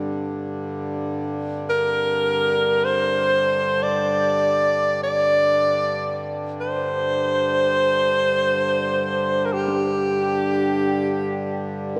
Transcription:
Already playing: G2 D3 C4
1.69 A#4
2.84 C5
3.82 D5
5.03 D5
6.61 C5
9.45 A#4
9.53 G4
9.68 D4
11.97 A#4

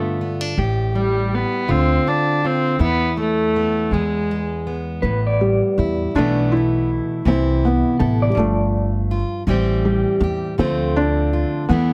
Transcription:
Already playing: G2 D3 A3 B3 D4 F4
0.21 B3
0.41 D4
0.57 A1 A2 G4
0.95 G3
1.34 B3
1.68 D2 D3 C4 F4
2.07 C4 D4
2.44 C4 F4
2.79 E2 B3 E4
3.17 A3
3.56 B3
3.91 E2 G#3 G#4
4.31 G#3
4.67 B3
5.02 A1 A2 B4
5.27 D5
5.41 G3
5.78 E2 E4
6.15 B1 B2 E3 A3 B3 D4 E4
6.52 E4
7.25 C2 C3 E3 C4 E4
7.30 E3
7.65 B3
7.99 A1 E4 A4
8.22 D5
8.29 G3
8.35 G1 G2 F3 A3
9.11 F4
9.47 A1 A2 E3 G3 C4 G4
9.85 G3
10.20 E2 G4
10.58 D2 D3 F3 A3 C4 F4
10.96 D4
11.33 F4
11.69 E2 E3 A3 B3 E4

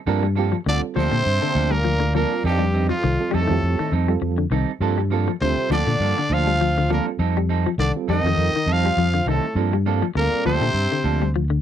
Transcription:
0.06 G2 F3 G3 A#3 C4 D4 F4 A4 A#4
0.23 G3
0.35 F3 G3 A#3 C4 D4 F4 G4 A4
0.52 F3
0.66 D2 D3 G3 C4 D4 F4 A4 D5
0.95 D2 C3 F3 A#3 D4 A4 C5
0.99 C4
1.12 A#2 D3
1.26 G2
1.41 D3 A#3 D4 A4
1.55 D2 F3 A#3 D4 A4
1.70 A#2 G3 A#4
1.75 A#3
1.84 F3
2.00 D3
2.14 A#2 F3 G3 A#3 C4 D4 F4 A4 A#4
2.18 A#3
2.44 F2 G2 G3 C4 D#4 G4 A4
2.48 G3
2.59 G3
2.73 G3 C4 D#4, muted clean electric guitar stroke
2.89 F2 F3 F4
3.04 C2 D#3
3.19 G3 C4 F4 A4
3.31 F2 A2 G3 A3 C4 D#4 A4
3.48 F2 D#3 G3 C4 F4 G4
3.63 F2
3.78 D#3 C4 D#4 A4, muted fingered electric bass stroke
3.92 F2 G3 C4 D#4 A4
4.08 G3 C4 F4 A4
4.21 F2 F3
4.38 D3
4.50 C2 D#3 G3 C4 D#4 A4
4.80 G2 F3 G3 A#3 C4 D4 F4 A4
4.98 G3
5.10 F3 G3 A#3 C4 D4 F4 A4
5.28 F3
5.41 D2 C3 D3 G3 C4 F4 A4 C5
5.57 muted fingered electric bass stroke
5.70 D2 D3 F3 A#3 D4 A4 D5
5.87 A#2 D3
6.00 G2 F3 A#3 D4 A4
6.18 D3
6.30 D2 F3 A#3 D4 F4 A4 F5
6.47 G3
6.61 F3
6.78 D3
6.89 A#2 F3 G3 A#3 C4 D4 F4 A4
6.93 A#4
7.19 F2 G3 C4 D#4 A4
7.37 G3
7.49 G3 C4 D#4 A4
7.66 F3
7.78 C2 D3 D#3 D4 D5
7.95 G3 C4 F4 A4
8.08 F2 D#3 G3 C4 D#4 A4 D#5
8.13 D#4
8.24 F2 D#3 G3 C4 F4 A4
8.38 F2
8.53 D#3, muted fingered electric bass stroke
8.66 F2 G3 C4 D#4 A4
8.72 F3 F4 F5
8.83 G3 C4 F4 C5
8.97 F2 F3
9.14 D3
9.26 C2 A2 D#3 G3 C4 D#4 A4
9.30 A4
9.35 A3
9.55 G2 F3 G3 A#3 C4 D4 F4 A4
9.73 G3
9.86 F3 G3 A#3 C4 D4 F4 A4
10.02 F3
10.15 D2 A#2 G3 C4 F4 A4 A#4, muted clean electric guitar stroke
10.20 A#3
10.45 D2 C3 F3 A#3 C4 D4 A4 C5
10.61 A#2 D3
10.74 G2
10.92 D3
11.04 D2 F3 A#3 D4 A4
11.22 G3
11.36 F3
11.50 D3

